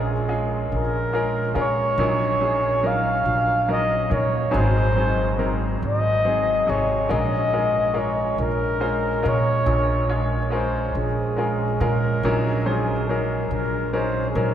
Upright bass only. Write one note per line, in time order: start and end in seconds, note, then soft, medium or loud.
0.00 0.67 A#1 medium
0.72 1.52 A#1 medium
1.55 1.96 A#2 medium
1.98 3.21 A#1 medium
3.25 4.07 A#1 medium
4.11 4.51 A#2 medium
4.54 5.78 G#1 medium
5.82 6.64 G#1 medium
6.69 7.09 G#1 medium
7.11 8.35 A#1 medium
8.38 9.20 A#1 medium
9.25 9.65 A#2 medium
9.66 10.91 A#1 medium
10.95 11.76 A#1 medium
11.81 12.21 A#2 medium
12.23 13.46 A#1 medium
13.51 14.31 A#1 medium
14.35 14.54 A#2 medium